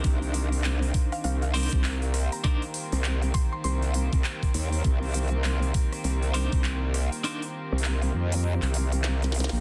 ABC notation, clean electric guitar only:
X:1
M:4/4
L:1/8
Q:"Swing 16ths" 1/4=100
K:Cm
V:1 name="Clean electric guitar"
[DEBc]4- [DEBc] [DEBc] z2 | [DEBc] z6 z | z4 z [DEBc] z2 | [DEBc] z6 z |]